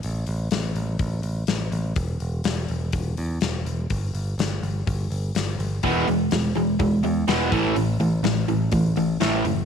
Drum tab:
HH |oooooooo|oooooooo|oooooooo|oooooooo|
SD |--o---o-|--o---o-|--o---o-|--o---o-|
BD |----o---|o---o---|o---o---|o---o--o|

HH |oooooooo|
SD |--o---o-|
BD |----o---|